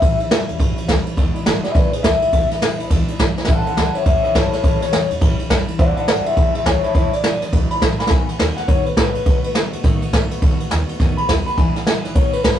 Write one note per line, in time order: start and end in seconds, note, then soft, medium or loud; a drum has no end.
0.00 0.14 A1 medium
0.00 0.19 A2 medium
0.00 0.19 E3 medium
0.00 0.20 G3 medium
0.00 0.19 C#4 medium
0.00 0.17 E4 medium
0.00 0.57 E5 loud
0.00 kick loud
0.00 ride medium
0.18 0.30 G3 medium
0.18 0.31 C#4 medium
0.18 0.30 E4 medium
0.18 ride medium
0.30 0.42 E2 medium
0.30 0.48 E3 medium
0.30 0.49 G3 medium
0.30 0.48 C#4 medium
0.30 0.46 E4 medium
0.30 snare loud
0.30 ride medium
0.47 0.56 E2 loud
0.47 0.58 G3 soft
0.47 0.59 C#4 medium
0.47 0.59 E4 medium
0.47 ride medium
0.58 0.71 G2 medium
0.58 0.77 A2 medium
0.58 0.77 E3 medium
0.58 0.77 G3 medium
0.58 0.77 C#4 loud
0.58 0.75 E4 medium
0.58 kick loud
0.58 ride medium
0.76 0.87 G3 medium
0.76 0.89 C#4 medium
0.76 0.88 E4 medium
0.76 ride medium
0.87 1.00 D2 medium
0.87 1.06 E3 medium
0.87 1.06 G3 medium
0.87 1.06 C#4 medium
0.87 1.04 E4 medium
0.87 kick medium
0.87 snare loud
0.87 ride medium
1.05 1.17 G3 medium
1.05 1.17 C#4 medium
1.05 1.17 E4 medium
1.05 ride medium
1.16 1.29 E1 loud
1.16 1.35 E2 medium
1.16 1.35 B2 loud
1.16 1.35 E3 loud
1.16 1.35 G#3 loud
1.16 1.34 D4 loud
1.16 1.33 E4 loud
1.16 kick loud
1.16 ride medium
1.34 1.43 E3 soft
1.34 1.45 G#3 medium
1.34 1.46 D4 medium
1.34 1.45 E4 medium
1.34 muted upright bass stroke medium
1.34 ride medium
1.45 1.58 G#1 medium
1.45 1.63 E3 medium
1.45 1.64 G#3 medium
1.45 1.63 D4 medium
1.45 1.61 E4 medium
1.45 snare loud
1.45 ride medium
1.62 1.73 E3 medium
1.62 1.74 G#3 soft
1.62 1.74 D4 soft
1.62 1.74 E4 medium
1.62 1.74 G#4 medium
1.62 1.75 E5 medium
1.62 muted upright bass stroke medium
1.62 snare soft
1.62 ride medium
1.73 1.87 B1 medium
1.73 1.92 E2 medium
1.73 1.92 B2 medium
1.73 1.93 E3 medium
1.73 1.92 G#3 medium
1.73 1.91 D4 medium
1.73 1.89 E4 medium
1.73 1.92 B4 medium
1.73 1.93 D5 medium
1.73 kick loud
1.73 snare soft
1.73 ride medium
1.91 2.01 E3 soft
1.91 2.02 G#3 soft
1.91 2.03 D4 soft
1.91 2.03 E4 medium
1.91 2.03 G#4 medium
1.91 2.03 B4 medium
1.91 ride medium
2.02 2.16 D2 medium
2.02 2.21 E3 medium
2.02 2.22 G#3 medium
2.02 2.21 D4 medium
2.02 2.19 E4 medium
2.02 2.87 E5 loud
2.02 kick medium
2.02 snare loud
2.02 ride loud
2.20 2.31 E3 soft
2.20 2.32 G#3 medium
2.20 2.32 D4 medium
2.20 2.32 E4 medium
2.20 ride medium
2.31 2.44 E1 loud
2.31 2.50 E2 medium
2.31 2.50 B2 medium
2.31 2.50 E3 medium
2.31 2.50 G#3 medium
2.31 2.49 D4 medium
2.31 2.48 E4 loud
2.31 kick loud
2.31 ride medium
2.49 2.59 E3 medium
2.49 2.60 G#3 medium
2.49 2.61 D4 medium
2.49 2.61 E4 medium
2.49 snare soft
2.49 ride medium
2.60 2.74 B1 medium
2.60 2.79 E3 medium
2.60 2.80 G#3 medium
2.60 2.79 D4 medium
2.60 2.78 E4 medium
2.60 snare loud
2.60 ride medium
2.79 2.87 B1 medium
2.79 2.90 E3 soft
2.79 2.90 G#3 soft
2.79 2.91 D4 medium
2.79 2.90 E4 medium
2.79 ride medium
2.90 3.02 D2 medium
2.90 3.08 E2 medium
2.90 3.08 B2 medium
2.90 3.09 E3 medium
2.90 3.08 G#3 medium
2.90 3.08 D4 loud
2.90 3.06 E4 loud
2.90 kick loud
2.90 ride medium
3.08 3.17 E3 medium
3.08 3.19 G#3 medium
3.08 3.20 D4 medium
3.08 3.19 E4 medium
3.08 ride medium
3.18 3.31 G#1 medium
3.18 3.37 E3 medium
3.18 3.37 G#3 medium
3.18 3.36 D4 medium
3.18 3.35 E4 medium
3.18 kick medium
3.18 snare loud
3.18 ride medium
3.36 3.47 E3 soft
3.36 3.48 G#3 medium
3.36 3.48 D4 medium
3.36 3.48 E4 medium
3.36 snare medium
3.45 3.60 A1 loud
3.45 3.65 A2 medium
3.45 3.66 E3 medium
3.45 3.66 G3 medium
3.45 3.65 A4 loud
3.45 3.65 F#5 loud
3.45 kick loud
3.45 snare medium
3.45 ride medium
3.49 3.66 C#4 medium
3.49 3.64 E4 medium
3.65 3.76 G3 soft
3.65 3.77 C#4 medium
3.65 3.77 E4 medium
3.65 3.76 A4 medium
3.65 3.77 F#5 loud
3.65 ride medium
3.76 3.89 C#2 medium
3.76 3.94 E3 soft
3.76 3.95 G3 soft
3.76 3.94 C#4 medium
3.76 3.93 E4 medium
3.76 3.94 A4 medium
3.76 3.96 F#5 medium
3.76 snare loud
3.76 ride medium
3.94 4.05 G3 soft
3.94 4.06 C#4 soft
3.94 4.05 E4 soft
3.94 4.05 C#5 medium
3.94 4.05 E5 medium
3.94 ride medium
4.05 4.18 E2 medium
4.05 4.23 A2 medium
4.05 4.24 E3 medium
4.05 4.24 G3 medium
4.05 4.23 C#4 medium
4.05 4.21 E4 medium
4.05 4.22 C#5 medium
4.05 4.22 E5 medium
4.05 kick loud
4.05 ride medium
4.23 4.33 G3 soft
4.23 4.34 C#4 soft
4.23 4.34 E4 medium
4.23 4.34 C#5 medium
4.23 4.34 E5 medium
4.23 ride medium
4.33 4.47 G2 loud
4.33 4.52 E3 medium
4.33 4.53 G3 medium
4.33 4.52 C#4 medium
4.33 4.50 E4 medium
4.33 4.51 A4 medium
4.33 4.52 C#5 loud
4.33 kick medium
4.33 snare loud
4.33 ride medium
4.51 4.62 G3 soft
4.51 4.63 C#4 medium
4.51 4.63 E4 medium
4.51 4.62 A4 medium
4.51 4.63 C#5 medium
4.51 snare soft
4.51 ride medium
4.62 4.76 A1 medium
4.62 4.81 A2 medium
4.62 4.81 E3 medium
4.62 4.82 G3 medium
4.62 4.81 C#4 loud
4.62 4.79 E4 medium
4.62 4.80 A4 medium
4.62 4.81 C#5 loud
4.62 kick loud
4.62 ride medium
4.80 4.92 G3 soft
4.80 4.93 C#4 medium
4.80 4.92 E4 medium
4.80 5.10 C#5 loud
4.80 snare soft
4.80 ride medium
4.91 5.04 E2 loud
4.91 5.10 E3 medium
4.91 5.11 G3 medium
4.91 5.09 C#4 medium
4.91 5.08 E4 medium
4.91 snare loud
4.91 ride medium
5.09 5.18 E2 medium
5.09 5.21 G3 medium
5.09 5.21 C#4 medium
5.09 5.21 E4 medium
5.09 ride medium
5.21 5.33 G2 loud
5.21 5.39 A2 medium
5.21 5.39 E3 medium
5.21 5.40 G3 loud
5.21 5.38 C#4 loud
5.21 5.37 E4 loud
5.21 kick loud
5.21 ride medium
5.38 5.49 G3 medium
5.38 5.50 C#4 medium
5.38 5.50 E4 medium
5.38 muted upright bass stroke medium
5.38 ride medium
5.49 5.62 F#1 medium
5.49 5.68 E3 medium
5.49 5.68 G3 medium
5.49 5.68 C#4 medium
5.49 5.66 E4 medium
5.49 kick medium
5.49 snare loud
5.49 ride medium
5.67 5.79 G3 medium
5.67 5.79 C#4 medium
5.67 5.79 E4 medium
5.67 ride medium
5.78 5.91 E1 medium
5.78 5.96 E2 medium
5.78 5.97 B2 medium
5.78 5.97 E3 medium
5.78 5.97 G#3 medium
5.78 5.96 D4 medium
5.78 5.94 E4 loud
5.78 5.95 D5 loud
5.78 5.96 F#5 loud
5.78 kick loud
5.78 ride medium
5.96 6.06 E3 soft
5.96 6.07 G#3 soft
5.96 6.08 D4 medium
5.96 6.07 E4 medium
5.96 6.06 D5 medium
5.96 6.07 F#5 loud
5.96 ride medium
6.07 6.20 G#1 medium
6.07 6.26 E3 medium
6.07 6.26 G#3 medium
6.07 6.25 D4 medium
6.07 6.24 E4 medium
6.07 6.25 D5 medium
6.07 6.25 F#5 loud
6.07 snare loud
6.07 ride medium
6.25 6.36 E3 soft
6.25 6.37 G#3 soft
6.25 6.37 D4 medium
6.25 6.36 E4 medium
6.25 6.35 G#4 medium
6.25 6.35 E5 medium
6.25 muted upright bass stroke medium
6.25 ride medium
6.36 6.49 B1 medium
6.36 6.55 E2 medium
6.36 6.55 B2 medium
6.36 6.55 E3 medium
6.36 6.55 G#3 medium
6.36 6.54 D4 loud
6.36 6.53 E4 medium
6.36 6.53 G#4 medium
6.36 6.54 E5 medium
6.36 kick loud
6.36 ride medium
6.54 6.64 E3 soft
6.54 6.65 G#3 soft
6.54 6.66 D4 medium
6.54 6.65 E4 soft
6.54 6.65 G#4 medium
6.54 6.65 E5 medium
6.54 ride medium
6.65 6.78 D2 medium
6.65 6.83 E3 medium
6.65 6.84 G#3 medium
6.65 6.83 D4 medium
6.65 6.82 E4 medium
6.65 6.83 C#5 loud
6.65 kick medium
6.65 snare loud
6.65 ride medium
6.83 6.94 E3 soft
6.83 6.94 G#3 medium
6.83 6.95 D4 medium
6.83 6.94 E4 medium
6.83 6.93 E4 medium
6.83 6.94 C#5 medium
6.83 ride medium
6.94 7.07 E1 loud
6.94 7.12 E2 medium
6.94 7.13 B2 medium
6.94 7.13 E3 medium
6.94 7.13 G#3 medium
6.94 7.12 D4 medium
6.94 7.11 E4 medium
6.94 7.12 C#5 loud
6.94 kick loud
6.94 ride medium
7.12 7.22 E3 soft
7.12 7.23 G#3 medium
7.12 7.24 D4 soft
7.12 7.23 E4 medium
7.12 7.41 D5 loud
7.12 muted upright bass stroke medium
7.12 snare soft
7.12 ride medium
7.23 7.35 B1 medium
7.23 7.41 E3 medium
7.23 7.42 G#3 medium
7.23 7.41 D4 medium
7.23 7.39 E4 medium
7.23 snare loud
7.23 ride medium
7.41 7.49 B1 medium
7.41 7.51 E3 soft
7.41 7.52 G#3 soft
7.41 7.52 D4 medium
7.41 7.52 E4 medium
7.41 snare soft
7.41 ride medium
7.52 7.65 D2 medium
7.52 7.70 E2 medium
7.52 7.70 B2 medium
7.52 7.71 E3 loud
7.52 7.71 G#3 medium
7.52 7.70 D4 medium
7.52 7.68 E4 loud
7.52 kick loud
7.52 ride medium
7.70 7.79 E3 soft
7.70 7.80 G#3 medium
7.70 7.81 D4 medium
7.70 7.81 E4 soft
7.70 7.81 B5 medium
7.70 ride medium
7.80 7.93 A1 medium
7.80 7.99 E3 medium
7.80 7.99 G#3 medium
7.80 7.98 D4 medium
7.80 7.97 E4 medium
7.80 kick medium
7.80 snare loud
7.80 ride medium
7.98 8.10 E3 soft
7.98 8.10 G#3 soft
7.98 8.10 D4 medium
7.98 8.10 E4 medium
7.98 8.11 B5 medium
7.98 snare medium
8.07 8.22 B1 loud
8.07 8.28 B2 medium
8.07 8.28 D#3 medium
8.07 8.28 A3 medium
8.07 8.28 G#5 medium
8.07 kick loud
8.07 snare medium
8.07 ride medium
8.11 8.28 B3 medium
8.11 8.26 F#4 medium
8.27 8.38 A3 medium
8.27 8.39 B3 soft
8.27 8.39 F#4 medium
8.27 8.39 F#5 loud
8.27 ride medium
8.38 8.51 D#2 medium
8.38 8.57 D#3 medium
8.38 8.57 A3 medium
8.38 8.57 B3 medium
8.38 8.55 F#4 medium
8.38 8.56 G#5 loud
8.38 snare loud
8.38 ride medium
8.56 8.67 A3 soft
8.56 8.68 B3 soft
8.56 8.68 F#4 medium
8.56 8.68 F#5 medium
8.56 snare soft
8.56 ride medium
8.67 8.80 F#2 medium
8.67 8.86 B2 medium
8.67 8.86 D#3 medium
8.67 8.86 A3 medium
8.67 8.86 B3 medium
8.67 8.84 F#4 medium
8.67 8.85 C#5 medium
8.67 kick loud
8.67 ride medium
8.85 8.96 A3 soft
8.85 8.97 B3 soft
8.85 8.97 F#4 soft
8.85 8.96 B4 medium
8.85 ride medium
8.96 9.09 A2 loud
8.96 9.14 D#3 soft
8.96 9.15 A3 medium
8.96 9.15 B3 medium
8.96 9.13 F#4 medium
8.96 9.53 B4 loud
8.96 kick medium
8.96 snare loud
8.96 ride medium
9.14 9.25 A3 soft
9.14 9.25 B3 medium
9.14 9.25 F#4 medium
9.14 muted upright bass stroke medium
9.14 ride medium
9.25 9.38 B1 medium
9.25 9.43 B2 medium
9.25 9.44 D#3 medium
9.25 9.44 A3 medium
9.25 9.43 B3 loud
9.25 9.41 F#4 medium
9.25 kick loud
9.25 ride medium
9.43 9.54 A3 medium
9.43 9.55 B3 medium
9.43 9.54 F#4 medium
9.43 muted upright bass stroke medium
9.43 ride medium
9.53 9.67 F#2 medium
9.53 9.72 D#3 medium
9.53 9.73 A3 medium
9.53 9.72 B3 medium
9.53 9.71 F#4 medium
9.53 snare loud
9.53 ride medium
9.72 9.80 F#2 loud
9.72 9.83 A3 medium
9.72 9.84 B3 medium
9.72 9.83 F#4 medium
9.72 ride medium
9.83 9.96 A2 medium
9.83 10.02 B2 loud
9.83 10.02 D#3 loud
9.83 10.02 A3 loud
9.83 10.02 B3 loud
9.83 10.00 F#4 loud
9.83 kick loud
9.83 snare soft
9.83 ride medium
10.01 10.12 A3 soft
10.01 10.13 B3 medium
10.01 10.12 F#4 medium
10.01 ride medium
10.12 10.25 G#2 medium
10.12 10.30 D#3 medium
10.12 10.31 A3 medium
10.12 10.31 B3 medium
10.12 10.29 F#4 medium
10.12 kick medium
10.12 snare loud
10.12 ride medium
10.30 10.42 A3 medium
10.30 10.42 B3 medium
10.30 10.41 F#4 medium
10.30 muted upright bass stroke medium
10.30 ride medium
10.41 10.54 B1 medium
10.41 10.60 B2 medium
10.41 10.60 D#3 loud
10.41 10.60 A3 loud
10.41 10.59 B3 medium
10.41 10.57 F#4 medium
10.41 kick loud
10.41 ride medium
10.59 10.70 A3 soft
10.59 10.71 B3 medium
10.59 10.70 F#4 medium
10.59 ride medium
10.70 10.83 D#2 loud
10.70 10.88 D#3 medium
10.70 10.89 A3 medium
10.70 10.89 B3 medium
10.70 10.87 F#4 medium
10.70 snare loud
10.70 ride medium
10.88 10.99 A3 soft
10.88 11.00 B3 medium
10.88 10.99 F#4 medium
10.88 ride medium
10.99 11.12 F#2 medium
10.99 11.17 B2 medium
10.99 11.18 D#3 medium
10.99 11.18 A3 medium
10.99 11.18 B3 medium
10.99 11.16 F#4 loud
10.99 kick loud
10.99 snare soft
10.99 ride medium
11.17 11.28 A3 soft
11.17 11.29 B3 soft
11.17 11.28 F#4 medium
11.17 11.28 B5 loud
11.17 ride medium
11.28 11.41 D#2 medium
11.28 11.46 D#3 medium
11.28 11.47 A3 medium
11.28 11.46 B3 medium
11.28 11.44 F#4 medium
11.28 kick medium
11.28 snare loud
11.28 ride medium
11.45 11.57 A3 soft
11.45 11.58 B3 medium
11.45 11.57 F#4 medium
11.45 11.57 B5 medium
11.45 muted upright bass stroke medium
11.45 ride medium
11.56 11.69 E1 loud
11.56 11.75 E2 medium
11.56 11.75 B2 medium
11.56 11.75 E3 medium
11.56 11.75 G#3 medium
11.56 11.74 D4 medium
11.56 11.73 E4 loud
11.56 11.76 G#5 loud
11.56 kick loud
11.56 ride medium
11.74 11.84 E3 soft
11.74 11.85 G#3 medium
11.74 11.86 D4 medium
11.74 11.86 E4 medium
11.74 11.87 F#5 medium
11.74 muted upright bass stroke medium
11.74 snare soft
11.74 ride medium
11.85 11.99 B1 medium
11.85 12.04 E3 medium
11.85 12.04 G#3 medium
11.85 12.03 D4 medium
11.85 12.02 E4 medium
11.85 12.04 G#5 medium
11.85 snare loud
11.85 ride medium
12.03 12.12 B1 medium
12.03 12.15 E3 soft
12.03 12.15 G#3 soft
12.03 12.16 D4 medium
12.03 12.15 E4 medium
12.03 12.15 F#5 loud
12.03 snare soft
12.03 ride medium
12.14 12.27 B1 medium
12.14 12.33 B2 medium
12.14 12.33 D#3 medium
12.14 12.34 A3 medium
12.14 12.33 B3 medium
12.14 12.31 F#4 medium
12.14 12.33 C#5 medium
12.14 kick loud
12.14 ride medium
12.32 12.43 A3 soft
12.32 12.44 B3 soft
12.32 12.44 F#4 medium
12.32 12.43 B4 loud
12.32 ride medium
12.43 12.56 G#2 medium
12.43 12.59 D#3 medium
12.43 12.59 A3 medium
12.43 12.59 B3 medium
12.43 12.59 F#4 medium
12.43 12.59 B4 loud
12.43 kick medium
12.43 snare loud
12.43 ride medium